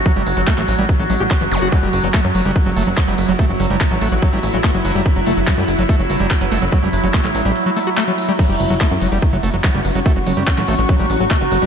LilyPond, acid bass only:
\new Staff \with { instrumentName = "Acid bass" } { \clef bass \time 4/4 \key fis \phrygian \tempo 4 = 144 fis16 g16 r16 fis16 a16 a16 fis16 g16 r16 fis16 fis16 g'16 fis16 e16 r16 fis'16 | fis16 g16 r16 fis16 a16 fis16 fis16 g16 r16 fis16 a16 fis16 fis16 g16 r16 fis16 | a16 fis16 fis16 g16 r16 fis16 a16 fis16 fis16 g16 r16 fis16 a16 fis16 fis16 g16 | r16 fis16 a16 fis16 fis16 g16 r16 fis16 a16 fis16 fis16 g16 r16 fis16 a16 fis16 |
fis16 g16 r16 fis16 a16 fis16 fis16 g16 r16 fis16 a16 fis'16 a16 fis16 r16 g16 | fis16 g16 r16 fis16 a16 fis16 fis16 g16 r16 fis16 a16 fis16 fis16 g16 r16 fis16 | a16 fis16 fis16 g16 r16 fis16 a16 fis16 fis16 g16 r16 fis16 a16 fis16 fis16 g16 | }